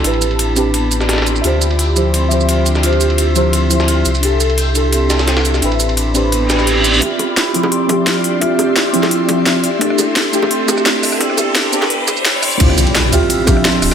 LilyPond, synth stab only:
\new Staff \with { instrumentName = "Synth stab" } { \time 4/4 \key d \dorian \tempo 4 = 172 <c' d' g' b'>4. <c' d' g' b'>4 r4. | <f' g' c'' e''>4. <f e' g' c''>4 <f g' c'' e''>4. | <f' g' c'' e''>4. <f e' g' c''>4 <f e' g' c''>4 r8 | <d' e' g' a'>4. <d' e' g' a'>4 <d' e' g' a'>4. |
<c' d' g' b'>4. <c' d' g' b'>4 <d' g' b'>4. | <c' f' g' e''>4. <f c' e' g'>4 <f c' g' e''>4. | <c' f' g' e''>4. <f c' e' g'>4 <f c' e' g'>4 r8 | <a d' e' g'>4. <a d' e' g'>4 <a d' e' g'>4. |
<b c' d' g'>4. <b c' d' g'>4 r4. | <c' e' f' g'>4. <c' f' g' e''>4 <f c' g' e''>4. | }